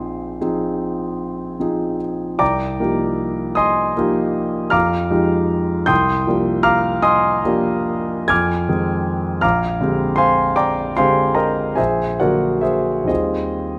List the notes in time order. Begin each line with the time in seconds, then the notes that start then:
Already playing: A#1 F3 C4 D#4 G#4 C5 F5 G#5 C6
0.41 F3 C4 D#4 G#4
1.60 F3 C4 D#4 G#4
2.39 C2 D5 G5 A#5 D6
2.80 F3 A#3 D#4 G4
3.55 D#5 G#5 C6 D#6
3.97 F3 A#3 D#4 G4
4.70 F2 F5 A#5 D6 F6
5.11 F3 G#3 D#4 G4
5.86 C2 G5 C6 D#6 G6
6.27 F3 A#3 D4 G4
6.63 F5 A#5 D6 F6
7.02 D#5 G#5 C6 D#6
7.45 F3 A#3 D4 G4
8.28 F2 G#5 D6 F6 G#6
8.69 D#3 G#3 C4 G#4
9.41 A#1 F5 A#5 D6 F6
9.81 D3 G#3 C4 G4
10.16 C5 F5 G#5 C6
10.56 D5 G5 A#5 D6
10.97 D3 G#3 C4 G4 C5 F5 G#5 C6
11.35 A#4 D#5 G5 A#5
11.76 A#1 G#4 C5 E5 G#5
12.20 D3 F#3 A#3 F#4 A#4 D5 F#5
12.61 G#4 C5 E5
13.04 D#2 D#3 G3 C4 F4 G#4 C5 D#5